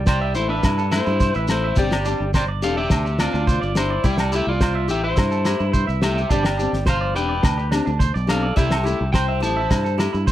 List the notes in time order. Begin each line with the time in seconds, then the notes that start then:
Already playing: C2
0.06 G4 C5 D5, kick, snare, low agogo, shekere
0.21 E5
0.35 A1 A3 E4 C5, shekere
0.49 D4 B4 E5
0.63 G2 E4, kick, snare, low agogo, shekere
0.78 A4, shekere
0.91 A3 E4 C5, snare, low agogo, shekere
1.06 G2 E4, shekere
1.20 C5, kick, snare, shekere
1.34 A1 B4 E5, shekere
1.47 A3 E4, snare, low agogo, shekere
1.52 C5
1.64 E5
1.76 G1 G3 C4 D4 G4 D5, muted clean electric guitar stroke, kick, shekere
1.91 G4, snare, low agogo, shekere
2.05 C4 D4 G4, shekere
2.20 G1
2.34 G4 C5 D5, kick, snare, low agogo, shekere
2.48 D5
2.62 E1 D4 G4 A4 F5, snare, shekere
2.66 C4
2.77 G4 D5 E5
2.90 D2 D4, kick, snare, low agogo, shekere
3.05 G4, shekere
3.19 C4 D4 F4 D5, muted steel-string acoustic guitar stroke, snare, low agogo, shekere
3.33 D2 D4, shekere
3.47 C5, kick, shekere
3.61 G1 D5, shekere
3.75 D4 E4 G4 C5, snare, low agogo, shekere
3.90 D5
4.04 C2 G3 A3 E4 G4 D5, kick, shekere
4.18 A4, snare, low agogo, shekere
4.32 A3 E4 G4, shekere
4.36 E5
4.47 C2 F4 D5
4.61 C5, kick, snare, low agogo, shekere
4.75 E5
4.88 A1 A3 E4 G4 E5, shekere
5.04 E4 C5 E5
5.16 G2 E4, kick, snare, low agogo, shekere
5.31 A4, shekere
5.45 A3 E4 G4, snare, low agogo, shekere
5.59 G2 E4, shekere
5.72 B4 C5, kick, shekere
5.87 C2 E5, shekere
6.02 A3 E4 G4 E5, snare, low agogo, shekere
6.15 E5, shekere
6.29 G1 G3 C4 D4 G4 D5, muted steel-string acoustic guitar stroke, kick, shekere
6.43 G4, snare, low agogo, shekere
6.58 D4 G4, shekere
6.62 C4
6.73 G1, snare
6.86 C5 F5, kick, snare, low agogo, shekere
7.01 D5
7.15 E1 C4 D4 G4 B4 G5, shekere
7.29 D5
7.43 D2 D4, kick, snare, low agogo, shekere
7.57 G4, shekere
7.71 D4 G4, snare, low agogo, shekere
7.75 C4
7.86 D2 D4, shekere
7.99 C5, kick, snare, shekere
8.14 B1 D5, shekere
8.27 C4 D4 G4 A4 F5, snare, low agogo, shekere
8.43 D5
8.56 C2 G3 A3 E4 G4 E5, kick, shekere
8.71 A4, snare, low agogo, shekere
8.83 A3 E4 G4, shekere
9.01 C2
9.13 C5 G5, kick, snare, low agogo, shekere
9.28 E5
9.40 A1 A3 E4 G4 C5 A5, shekere
9.57 E5
9.71 G2 E4, kick, snare, low agogo, shekere
9.84 A4, shekere
9.98 A3 E4 G4, snare, low agogo, shekere
10.13 G2 E4, shekere
10.27 C5, kick, shekere